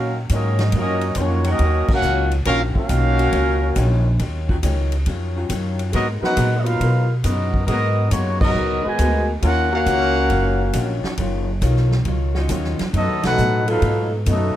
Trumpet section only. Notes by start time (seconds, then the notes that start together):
Already playing: C#4 F#4 A#4 F5
0.33 C#4 F#4 A#4 D#5
0.78 C#4 F#4 A#4 D#5
1.16 C5
1.20 A#3 F4 F#4 C#5
1.49 C#4 F#4 A#4 D#5
1.91 C#4 A#4 F5 F#5
2.45 C#4 F#4 A#4 F5
2.75 C#4 F#4 A#4 F5
5.93 B3 F#4 A#4 D#5
6.21 D#4 A#4 B4 F#5
6.57 D#5
6.63 D#4 A#4 B4 F5
7.24 B3 F#4 A#4 D#5
7.65 B3 F#4 A#4 D#5
8.10 A#3 D#4 F#4 C#5
8.40 B3 F#4 A#4 D#5
8.85 F#4 B4 D#5 G#5
9.43 C#4 F4 A#4 F#5
9.72 C#4 A#4 F5 F#5
12.95 B3 F#4 A4 D#5
13.24 D#4 A4 B4 F#5
13.68 D#4 A4 B4 F5
14.28 B3 F#4 A4 D#5